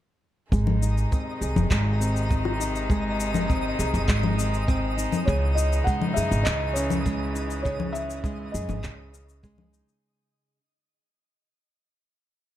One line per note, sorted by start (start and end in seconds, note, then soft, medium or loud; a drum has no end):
0.52 1.04 G#1 loud
0.52 5.23 C3 medium
0.52 5.23 D#3 medium
0.52 1.70 G#3 medium
0.52 9.99 G#3 medium
0.52 5.23 D#4 medium
0.52 1.41 G#4 medium
0.52 10.04 D#5 medium
0.52 10.04 D#6 medium
0.52 kick medium
0.52 shaker soft
0.67 low conga medium
0.82 2.59 D#4 medium
0.82 shaker medium
0.98 shaker soft
1.12 1.99 C4 medium
1.12 kick medium
1.12 shaker soft
1.41 1.51 C2 medium
1.41 2.90 G#4 medium
1.41 shaker medium
1.56 1.66 F#1 medium
1.56 low conga medium
1.56 shaker soft
1.71 3.71 G#1 medium
1.71 2.89 G#3 medium
1.71 kick loud
1.71 clap medium
1.71 shaker soft
2.00 2.29 C4 medium
2.00 shaker medium
2.16 shaker soft
2.30 3.48 C4 medium
2.30 kick medium
2.30 shaker soft
2.45 low conga medium
2.60 3.19 D#4 medium
2.60 shaker medium
2.76 shaker soft
2.90 4.08 G#3 medium
2.90 3.78 G#4 medium
2.90 kick loud
2.90 shaker soft
3.20 4.97 D#4 medium
3.20 shaker medium
3.34 low conga medium
3.34 shaker soft
3.49 4.37 C4 medium
3.49 kick medium
3.49 shaker soft
3.79 3.89 C2 medium
3.79 5.27 G#4 medium
3.79 shaker medium
3.94 4.08 F#1 medium
3.94 shaker soft
4.08 5.05 G#1 medium
4.08 5.86 G#3 medium
4.08 kick loud
4.08 clap medium
4.08 shaker soft
4.23 low conga medium
4.38 4.67 C4 medium
4.38 shaker medium
4.54 shaker soft
4.68 5.33 C4 medium
4.68 kick loud
4.68 shaker soft
4.98 5.57 D#4 medium
4.98 shaker medium
5.12 low conga medium
5.12 shaker soft
5.25 5.79 C#2 loud
5.25 6.46 C#3 medium
5.25 9.99 C#3 medium
5.25 9.99 E3 medium
5.25 7.63 D#4 medium
5.25 6.16 G#4 medium
5.25 5.57 C#5 medium
5.25 kick loud
5.25 shaker soft
5.55 7.35 D#4 medium
5.55 5.84 D#5 medium
5.55 shaker medium
5.73 shaker soft
5.84 7.05 G#3 medium
5.84 6.13 F#5 loud
5.84 kick loud
5.84 shaker soft
6.01 low conga medium
6.14 6.27 F#2 medium
6.14 7.65 G#4 medium
6.14 6.43 E5 medium
6.14 shaker medium
6.32 6.41 G#1 medium
6.32 shaker soft
6.44 8.47 C#2 medium
6.44 7.64 C#3 medium
6.44 6.72 D#5 medium
6.44 kick loud
6.44 clap medium
6.44 shaker soft
6.73 9.13 C#4 medium
6.73 7.30 C#5 medium
6.73 shaker medium
6.90 low conga medium
6.90 shaker soft
7.06 8.24 G#3 medium
7.06 kick medium
7.06 shaker soft
7.35 8.87 D#4 medium
7.35 shaker medium
7.50 shaker soft
7.63 8.83 C#3 medium
7.63 8.54 G#4 medium
7.63 7.94 C#5 medium
7.63 kick medium
7.63 shaker soft
7.80 low conga medium
7.93 8.49 E5 loud
7.93 shaker medium
8.10 shaker soft
8.24 9.43 G#3 medium
8.24 kick loud
8.24 shaker soft
8.52 8.64 F#2 medium
8.52 10.59 G#4 medium
8.52 9.68 D#5 medium
8.52 shaker medium
8.69 8.86 G#1 medium
8.69 low conga medium
8.69 shaker soft
8.84 9.80 C#2 medium
8.84 10.59 C#3 medium
8.84 kick loud
8.84 clap medium
8.84 shaker soft
9.13 10.59 C#4 medium
9.13 shaker medium
9.29 shaker soft
9.43 10.59 G#3 medium
9.43 kick loud
9.43 shaker soft
9.58 low conga medium
9.73 10.58 D#4 medium
9.73 shaker medium
9.89 shaker soft